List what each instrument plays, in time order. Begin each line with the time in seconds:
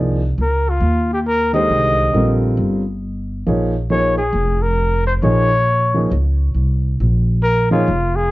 Already playing: upright bass C2, grand piano F3 A#3 D#4 G#4 D5
0.37 upright bass C#2, trumpet A#4
0.69 trumpet F4
0.80 upright bass D#2
1.13 trumpet G4
1.27 trumpet A#4
1.53 grand piano D3 D#3 G#3 G4 C5, trumpet D#5
1.69 upright bass C2
2.12 upright bass A#1, grand piano D3 G3 C4 F4 A#4
2.57 upright bass G1
3.46 upright bass A#1, grand piano F3 A#3 D#4 G#4 C#5
3.90 grand piano F3 A#3 D#4 G#4 C#5, trumpet C#5
4.18 trumpet G#4
4.33 upright bass F1
4.62 trumpet A#4
5.07 trumpet C5
5.22 upright bass A#1, grand piano F3 A#3 D#4 G#4 C#5, trumpet C#5
5.94 grand piano F3 A#3 D#4 G#4 C#5
6.11 upright bass C#2
6.54 upright bass C2
7.00 upright bass A#1
7.43 trumpet A#4
7.71 grand piano F3 A#3 D#4 G#4 C#5, trumpet F4
7.88 upright bass F1
8.16 trumpet G#4